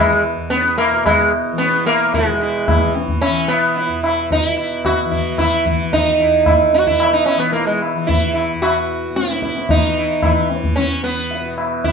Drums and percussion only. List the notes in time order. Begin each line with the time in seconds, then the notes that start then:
0.51 tabla te
0.78 tabla na
1.06 tabla na, tabla ge
1.59 tabla te
1.87 tabla na
2.14 tabla tin, tabla ge
2.68 tabla na, tabla ge
2.95 tabla te
3.09 tabla ge
3.22 tabla na
3.50 tabla na
3.77 tabla tin
4.04 tabla na
4.31 tabla tin, tabla ge
4.85 tabla na, tabla ge
5.12 tabla ge
5.38 tabla na, tabla ge
5.66 tabla ge
5.93 tabla tin, tabla ge
6.46 tabla na, tabla ge
6.73 tabla te
6.87 tabla ge
7.00 tabla na
7.28 tabla na
7.54 tabla tin
7.82 tabla na
8.09 tabla tin, tabla ge
8.36 tabla na
8.63 tabla na
9.16 tabla te
9.30 tabla te
9.42 tabla ke
9.56 tabla te
9.69 tabla tin, tabla ge
10.23 tabla na, tabla ge
10.50 tabla te
10.64 tabla ge
10.77 tabla te
11.03 tabla te
11.31 tabla tin
11.58 tabla na
11.84 tabla tin, tabla ge